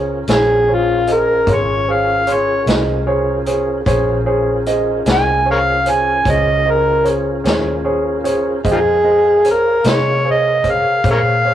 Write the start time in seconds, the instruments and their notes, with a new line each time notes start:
Already playing: fingered electric bass C#2, tonewheel organ C#4 F4 G#4 A#4, upright piano G#4 C5 C#5
0.27 fingered electric bass A#1, upright piano G#4 C5 C#5, snare, closed hi-hat
0.32 harmonica G#4
0.68 upright piano G#4 C5 C#5
0.74 harmonica F4
1.07 upright piano G#4 C5 D#5, closed hi-hat
1.12 harmonica A#4
1.47 fingered electric bass G#1, upright piano G#4 C#5 C6, kick, closed hi-hat
1.54 harmonica C#5
1.88 upright piano G#4 C5 C#5, harmonica F5
2.27 upright piano G#4 C#5 C6, closed hi-hat
2.34 harmonica C#5
2.66 fingered electric bass C2, upright piano G#4 C5 D#5, snare, closed hi-hat
3.07 upright piano G#4 C5 C#5
3.46 upright piano G#4 C5 C#5, closed hi-hat
3.86 fingered electric bass A#1, tonewheel organ C#4 F4 G#4 A#4, upright piano G#4 C5 C#5, kick, closed hi-hat
4.26 upright piano G#4 C5 C#5
4.66 upright piano G#4 C5 D#5, closed hi-hat
5.06 fingered electric bass C2, upright piano G#4 C5 D#5, snare, closed hi-hat
5.12 harmonica G#5
5.46 upright piano G#4 C5 C#5
5.51 harmonica A#4 C#5 F5
5.86 upright piano G#4 C5 C#5, closed hi-hat
5.91 harmonica G#5
6.25 fingered electric bass C#2, upright piano G#4 C5 C#5, kick, closed hi-hat
6.31 harmonica D#5
6.66 upright piano G#4 C5 D#5
6.70 harmonica A#4
7.04 upright piano G#4 C5 C#5, closed hi-hat
7.44 fingered electric bass D#2, upright piano G#4 C5 C#5, snare, closed hi-hat
7.84 upright piano G#4 C5 C#5
8.24 upright piano G#4 C5 C#5, closed hi-hat
8.64 fingered electric bass F2, tonewheel organ G#4 A#4 F5, upright piano G#4 C5 D#5, kick, closed hi-hat
8.72 harmonica D#4 F4 G#4
9.04 upright piano G#4 C5 D#5
9.44 upright piano G#4 C5 C#5, closed hi-hat
9.51 harmonica A#4
9.84 fingered electric bass C3, upright piano G#4 D#5 C6, snare, closed hi-hat
9.90 harmonica C#5
10.25 upright piano G#4 C5 C#5
10.31 harmonica D#5
10.64 upright piano G#4 C5 C#5, kick, closed hi-hat
10.70 harmonica F5
11.04 fingered electric bass A#2, upright piano G#4 C5 C#5, kick, closed hi-hat
11.11 harmonica A#4 C#5 F5
11.45 upright piano G#4 C5 C#5